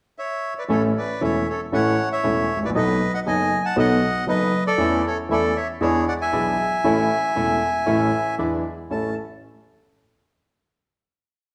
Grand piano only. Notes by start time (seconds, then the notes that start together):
0.68 A1 A2 E3 A3 C#4 A4
1.21 E1 E2 E3 A3 C#4 A4
1.72 A1 A2 E3 A3 C#4 A4
2.24 E1 E2 E3 A3 C#4 A4
2.56 G#1
2.62 A1
2.70 A#1
2.75 B1 B2 F#3 B3 D#4 A4
3.26 F#1 F#2 F#3 B3 D#4 A4
3.76 B1 B2 F#3 B3 D#4 A4
4.26 F#1 F#2 F#3 B3 D#4 A4
4.78 E2 E3 A3 C#4 A4
5.29 E2 E3 A3 C#4 A4
5.81 E2 E3 B3 D4 G#4
6.32 B1 B2 E3 B3 D4 G#4
6.84 A1 A2 E3 A3 C#4 A4
7.36 E1 E2 E3 A3 C#4 A4
7.86 A1 A2 E3 A3 C#4 A4
8.38 E2 E3 B3 D4 G#4
8.91 A1 C#4 E4 A4